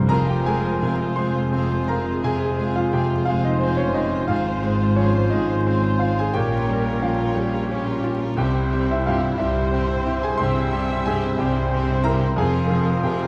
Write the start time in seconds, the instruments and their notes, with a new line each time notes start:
Already playing: grand piano G2 G3 C4 G4 A#4 C5 G5 A#5 C6
0.06 double bass section F1, timpani F2, cello section F2, grand piano F2 A#5, violin section C4 G#4 F5, french horn section C4 F4, clarinet F4, viola section A#4, oboe C5, flute section G#5
0.10 grand piano A#4
0.25 violin section F4 C5
0.29 grand piano G4 G5
0.44 grand piano G#3 G#4 G#5, violin section C4 G#4 F5
0.61 violin section F4 C5
0.79 grand piano C3, violin section C4 G#4 F5
0.96 violin section F4 C5
1.15 double bass section F1, cello section F2, grand piano G#3 C5 C6, violin section C4 G#4 F5, clarinet F4, viola section G#4, oboe C5, flute section G#5
1.34 violin section F4 C5
1.52 violin section C4 G#4 F5, grand piano C4
1.70 violin section F4 C5
1.86 violin section C4 G#4 F5, grand piano F4 A#4 A#5
2.03 violin section F4
2.07 violin section C5
2.21 double bass section F1, cello section F2, grand piano C3 G#4 G#5, violin section C4 G#4 F5, clarinet F4, oboe C5, flute section G#5
2.37 violin section F4
2.42 violin section C5
2.56 grand piano G#3, violin section C4 G#4
2.60 violin section F5
2.73 violin section F4, grand piano F5
2.77 grand piano F4, violin section C5
2.90 grand piano C3 G4 G5, violin section C4 G#4
2.96 violin section F5
3.08 violin section F4
3.14 violin section C5
3.25 cello section F2, violin section C4 G#4, grand piano F4 F5, clarinet F4, viola section C5, oboe C5, flute section G#5
3.29 double bass section F1, grand piano G#3, violin section F5
3.42 grand piano D#4 D#5, violin section F4
3.47 violin section C5
3.59 violin section C4 G#4, grand piano C4 C5
3.64 violin section F5
3.76 grand piano C#4 C#5, violin section F4
3.80 violin section C5
3.94 violin section C4 G#4 F5, grand piano D#4 F4 D#5
4.12 violin section F4 C5
4.28 double bass section G#1, grand piano G#2 F4 F5, cello section G#2, violin section C4 G#4 F5, clarinet F4, viola section C5, oboe C5, flute section G#5
4.47 violin section F4 C5
4.63 grand piano G#3, violin section C4 G#4 F5
4.79 violin section F4 C5
4.96 grand piano F3 C#4 C#5, violin section C4 G#4 F5
5.12 violin section F4 C5
5.30 double bass section G#1, cello section G#2, grand piano G#3 D#4 D#5, violin section C4 G#4 F5
5.48 violin section F4 C5
5.65 violin section C4 G#4 F5, grand piano C4
5.83 violin section F4 C5
5.99 violin section C4 G#4 F5, grand piano F4 F5
6.17 violin section F4 C5, grand piano G#4 G#5
6.33 double bass section A#1, grand piano A#2 G4 G5, cello section A#2, violin section C#4 G4 A#4, french horn section C#4 F4, clarinet F4, viola section A#4, oboe C#5, flute section G5
6.51 violin section F4 A#4 C#5
6.68 grand piano G3, violin section C#4 G4 A#4
6.85 violin section F4 A#4 C#5
7.01 grand piano F3 F4 F5, violin section C#4 G4 A#4
7.17 violin section F4 A#4
7.24 violin section C#5
7.34 cello section A#2, grand piano G3, violin section C#4 G4
7.38 double bass section A#1, viola section G4, violin section A#4
7.52 violin section F4 A#4 C#5
7.67 violin section C#4 G4
7.71 grand piano C#4, violin section A#4
7.85 violin section F4 A#4 C#5
8.02 violin section C#4 G4 A#4, grand piano F4
8.18 violin section F4 A#4
8.23 violin section C#5
8.37 grand piano C2 G4 G5, double bass section C2, cello section C3, timpani C3, violin section C4 G4 E5, french horn section C4 G4, clarinet C4, viola section E4, oboe C5, flute section G5
8.53 violin section E4 C5
8.69 grand piano G3, violin section C4 G4 E5
8.87 violin section E4 C5
8.91 grand piano E4 E5
9.04 grand piano G2 F4 F5, violin section C4 G4 E5
9.20 violin section E4 C5
9.37 double bass section C2, cello section C3, grand piano G3 E4 E5, violin section C4 G4 E5, clarinet C4, viola section C5, oboe C5, flute section G5
9.54 violin section E4 C5
9.70 violin section C4 G4 E5, grand piano C4
9.87 violin section E4 C5
10.04 violin section C4 G4 E5, grand piano E4
10.20 violin section E4 C5, grand piano G#4 G#5
10.38 double bass section C2, grand piano G2 C5 C6, cello section C3, violin section C4 G4 E5, clarinet C4, oboe C5, viola section E5, flute section G5
10.55 violin section E4 C5
10.70 grand piano G3, violin section C4 G4 E5
10.89 violin section E4 C5
11.05 grand piano G2 G#4 G#5, violin section C4 G4 E5
11.22 violin section E4 C5
11.38 double bass section C2, cello section C3, grand piano G3 G4 G5, clarinet C4, violin section C4 G4 E5, oboe C5, viola section C5, flute section G5
11.55 violin section E4 C5
11.71 violin section C4 G4 E5, grand piano C4
11.89 violin section E4 C5
12.04 violin section C4 G4 E5, grand piano E4 A#4 A#5
12.20 violin section E4 C5
12.36 double bass section F1, grand piano F2 G#4 G#5, cello section F2, clarinet C4, french horn section C4 F4, violin section F4 G#4, viola section A#4, oboe C5, flute section F5
12.53 violin section F4 G#4 C5
12.70 grand piano F3, violin section F4 G#4
12.87 violin section F4 G#4 C5
13.03 grand piano C3 G4 G5, violin section F4 G#4
13.20 violin section F4 G#4 C5